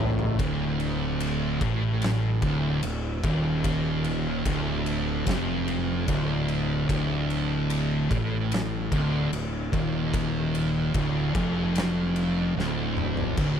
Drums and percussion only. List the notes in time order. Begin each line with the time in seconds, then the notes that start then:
0.19 floor tom
0.39 kick, ride
0.80 ride
1.20 ride
1.61 kick, ride
2.02 snare, ride
2.42 kick, ride
2.83 ride
3.23 kick, ride
3.64 kick, ride
4.04 ride
4.45 kick, ride
4.86 ride
5.27 kick, snare, ride
5.68 ride
6.08 kick, ride
6.48 ride
6.89 kick, ride
7.30 ride
7.70 ride
8.11 kick, ride
8.52 snare, ride
8.92 kick, ride
9.33 ride
9.73 kick, ride
10.14 kick, ride
10.55 ride
10.94 kick, ride
11.35 kick, ride
11.75 snare, ride
12.16 ride
12.59 snare
12.97 mid tom
13.17 floor tom
13.37 kick, ride, crash